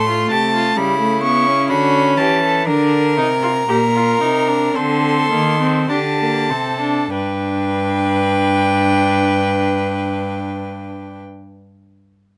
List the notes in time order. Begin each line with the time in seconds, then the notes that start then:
Already playing: A2 A3 C6
0.09 F4
0.31 C3 G4 A5
0.55 F4
0.76 C#3 G3 E4 B5
1.00 A3
1.23 B3 C#6
1.46 C#4
1.70 D3 F#4 B5
2.17 E3 G4 A5
2.42 A4
2.67 D3 D4 A#4 A#5
3.17 C3 D#4
3.43 F4
3.69 A#2 G4 A#4
3.95 F4
4.21 C3 D#4
4.48 D4
4.75 D3 C4 A4 C6
5.31 D#3 A#3
5.60 C4
5.89 D3 D4 G4 A5
6.19 A#3
6.50 C3 C4 A4
6.81 D4
7.11 G2 D4 B4 G5